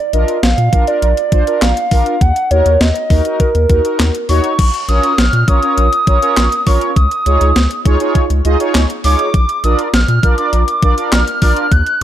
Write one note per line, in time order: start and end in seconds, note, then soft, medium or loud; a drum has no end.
0.00 0.15 D5 loud
0.13 0.24 A#1 loud
0.13 0.38 D4 medium
0.13 0.38 F4 medium
0.13 0.38 A#4 medium
0.13 0.42 D#5 medium
0.13 closed hi-hat medium
0.28 closed hi-hat medium
0.43 0.54 A#1 loud
0.43 0.89 F5 loud
0.43 snare loud
0.43 closed hi-hat medium
0.58 0.69 A#2 medium
0.58 closed hi-hat soft
0.73 0.84 A#1 loud
0.73 0.85 D4 medium
0.73 0.85 F4 medium
0.73 0.85 A#4 medium
0.73 kick medium
0.73 closed hi-hat medium
0.87 1.12 D4 medium
0.87 1.12 F4 medium
0.87 1.12 A#4 medium
0.87 1.02 D5 medium
0.87 closed hi-hat soft
1.02 1.13 A#1 loud
1.02 1.63 D5 loud
1.02 closed hi-hat medium
1.17 closed hi-hat medium
1.32 1.43 A#1 loud
1.32 1.44 D4 medium
1.32 1.44 F4 medium
1.32 1.44 C5 medium
1.32 kick loud
1.32 closed hi-hat medium
1.47 1.71 D4 medium
1.47 1.71 F4 medium
1.47 1.71 A#4 medium
1.47 closed hi-hat medium
1.62 1.73 A#1 loud
1.62 2.23 F5 loud
1.62 snare loud
1.62 clap medium
1.62 closed hi-hat medium
1.77 closed hi-hat medium
1.91 2.03 A#1 medium
1.91 2.16 D4 medium
1.91 2.16 F4 medium
1.91 2.16 A#4 medium
1.91 kick medium
1.91 open hi-hat medium
2.06 closed hi-hat soft
2.21 2.32 D#2 loud
2.21 2.53 F#5 loud
2.21 kick loud
2.21 closed hi-hat medium
2.36 closed hi-hat medium
2.51 2.62 D#2 loud
2.51 2.75 D#4 medium
2.51 2.75 F#4 medium
2.51 2.75 A#4 medium
2.51 2.82 C#5 loud
2.51 closed hi-hat medium
2.66 2.77 D#2 loud
2.66 closed hi-hat medium
2.81 2.92 D#2 loud
2.81 3.42 D#5 loud
2.81 snare loud
2.81 closed hi-hat medium
2.96 closed hi-hat soft
3.10 3.21 D#2 loud
3.10 3.23 D#4 medium
3.10 3.23 F#4 medium
3.10 3.23 A#4 medium
3.10 kick medium
3.10 open hi-hat soft
3.25 3.50 D#4 medium
3.25 3.50 F#4 medium
3.25 3.50 A#4 medium
3.25 closed hi-hat medium
3.40 4.29 A#4 medium
3.40 kick loud
3.40 closed hi-hat medium
3.55 3.66 D#2 loud
3.55 closed hi-hat medium
3.70 3.81 D#2 loud
3.70 3.82 D#4 medium
3.70 3.82 F#4 medium
3.70 3.82 A#4 medium
3.70 kick loud
3.70 closed hi-hat medium
3.84 4.09 D#4 medium
3.84 4.09 F#4 medium
3.84 4.09 A#4 medium
3.84 closed hi-hat medium
3.99 4.11 D#2 loud
3.99 snare loud
3.99 clap medium
3.99 closed hi-hat medium
4.15 closed hi-hat medium
4.29 4.40 D#2 loud
4.29 4.53 D#4 medium
4.29 4.53 F#4 medium
4.29 4.53 C#5 loud
4.29 4.90 C#6 loud
4.29 open hi-hat medium
4.44 closed hi-hat medium
4.59 4.70 A#1 loud
4.59 kick loud
4.59 closed hi-hat medium
4.59 crash loud
4.74 closed hi-hat medium
4.88 5.00 A#1 loud
4.88 5.13 C#4 medium
4.88 5.13 F4 medium
4.88 5.13 A#4 medium
4.88 5.13 C#5 medium
4.88 5.20 D#6 loud
4.88 closed hi-hat medium
5.03 closed hi-hat medium
5.18 5.29 A#1 loud
5.18 5.50 F6 loud
5.18 snare loud
5.18 closed hi-hat medium
5.33 5.44 A#2 medium
5.33 closed hi-hat soft
5.48 5.59 A#1 loud
5.48 5.60 C#4 medium
5.48 5.60 F4 medium
5.48 5.60 A#4 medium
5.48 5.60 C#5 medium
5.48 6.68 D#6 loud
5.48 kick medium
5.48 closed hi-hat medium
5.63 5.87 C#4 medium
5.63 5.87 F4 medium
5.63 5.87 A#4 medium
5.63 5.87 C#5 medium
5.63 closed hi-hat soft
5.78 5.89 A#1 loud
5.78 closed hi-hat medium
5.93 closed hi-hat medium
6.07 6.18 A#1 loud
6.07 6.19 C#4 medium
6.07 6.19 F4 medium
6.07 6.19 A#4 medium
6.07 6.19 C#5 medium
6.07 kick loud
6.07 closed hi-hat medium
6.22 6.46 C#4 medium
6.22 6.46 F4 medium
6.22 6.46 A#4 medium
6.22 6.46 C#5 loud
6.22 closed hi-hat medium
6.37 6.48 A#1 loud
6.37 snare loud
6.37 clap medium
6.37 closed hi-hat medium
6.52 closed hi-hat medium
6.66 6.78 A#1 loud
6.66 6.91 C#4 medium
6.66 6.91 F4 medium
6.66 6.91 A#4 medium
6.66 6.91 C#5 medium
6.66 6.96 C#6 loud
6.66 kick loud
6.66 open hi-hat medium
6.81 closed hi-hat medium
6.96 7.08 C#2 loud
6.96 7.82 D#6 medium
6.96 kick loud
6.96 closed hi-hat medium
7.11 closed hi-hat medium
7.26 7.37 C#2 loud
7.26 7.50 D#4 medium
7.26 7.50 F4 medium
7.26 7.50 G#4 medium
7.26 7.50 C#5 medium
7.26 closed hi-hat medium
7.41 7.52 C#2 loud
7.41 closed hi-hat medium
7.56 7.67 C#2 loud
7.56 snare loud
7.56 closed hi-hat medium
7.71 closed hi-hat medium
7.85 7.97 C#2 loud
7.85 7.98 D#4 medium
7.85 7.98 F4 medium
7.85 7.98 G#4 medium
7.85 7.98 C#5 loud
7.85 kick medium
7.85 closed hi-hat medium
8.00 8.25 D#4 medium
8.00 8.25 F4 medium
8.00 8.25 G#4 medium
8.00 8.25 C#5 medium
8.00 closed hi-hat medium
8.15 kick loud
8.15 closed hi-hat medium
8.30 8.41 C#2 medium
8.30 closed hi-hat medium
8.45 8.56 C#2 loud
8.45 8.57 D#4 medium
8.45 8.57 F4 medium
8.45 8.57 G#4 medium
8.45 8.57 D#5 loud
8.45 closed hi-hat medium
8.60 8.84 D#4 medium
8.60 8.84 F4 medium
8.60 8.84 G#4 medium
8.60 8.84 C#5 medium
8.60 closed hi-hat medium
8.75 8.86 C#2 loud
8.75 snare loud
8.75 clap medium
8.75 closed hi-hat medium
8.90 closed hi-hat medium
9.04 9.15 C#2 loud
9.04 9.29 D#4 medium
9.04 9.29 F4 medium
9.04 9.29 G#4 medium
9.04 9.29 C#5 medium
9.04 9.60 D6 loud
9.04 open hi-hat medium
9.19 closed hi-hat medium
9.34 9.45 A#1 loud
9.34 kick loud
9.34 closed hi-hat medium
9.49 closed hi-hat medium
9.64 9.75 A#1 loud
9.64 9.88 D4 medium
9.64 9.88 F4 medium
9.64 9.88 A#4 medium
9.64 9.88 D5 medium
9.64 9.77 D#6 medium
9.64 closed hi-hat medium
9.79 closed hi-hat medium
9.93 10.05 A#1 loud
9.93 10.35 F6 loud
9.93 snare loud
9.93 closed hi-hat medium
10.08 10.19 A#2 loud
10.08 closed hi-hat soft
10.23 10.34 A#1 loud
10.23 10.35 D4 medium
10.23 10.35 F4 medium
10.23 10.35 A#4 medium
10.23 10.35 D5 medium
10.23 kick medium
10.23 closed hi-hat medium
10.38 10.62 D4 medium
10.38 10.62 F4 medium
10.38 10.62 A#4 medium
10.38 10.62 D5 medium
10.38 10.52 D6 medium
10.38 closed hi-hat soft
10.53 10.64 A#1 loud
10.53 closed hi-hat medium
10.68 closed hi-hat medium
10.82 10.94 A#1 loud
10.82 10.95 D4 medium
10.82 10.95 F4 medium
10.82 10.95 A#4 medium
10.82 10.95 D5 medium
10.82 kick loud
10.82 closed hi-hat medium
10.97 11.22 D4 medium
10.97 11.22 F4 medium
10.97 11.22 A#4 medium
10.97 11.22 D5 medium
10.97 closed hi-hat medium
11.12 11.23 A#1 loud
11.12 11.42 F6 loud
11.12 snare loud
11.12 clap medium
11.12 closed hi-hat medium
11.27 closed hi-hat medium
11.42 11.53 A#1 loud
11.42 11.66 D4 medium
11.42 11.66 F4 medium
11.42 11.66 A#4 medium
11.42 11.66 D5 medium
11.42 11.73 F6 loud
11.42 kick medium
11.42 open hi-hat medium
11.57 closed hi-hat medium
11.72 11.83 D#2 loud
11.72 12.03 F#6 loud
11.72 kick loud
11.72 closed hi-hat medium
11.87 closed hi-hat medium